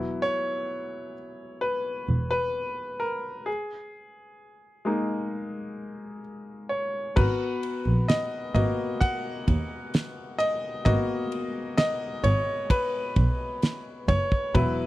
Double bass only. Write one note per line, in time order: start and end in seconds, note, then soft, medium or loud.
2.09 2.17 E1 medium
7.17 7.25 G#1 loud
7.86 7.94 A#1 medium
8.55 8.63 G#1 loud
9.48 9.56 D#2 medium
10.86 10.94 G#1 loud
12.24 12.32 G#1 loud
13.17 13.25 B1 loud
14.08 14.16 F#1 medium
14.55 14.63 E1 loud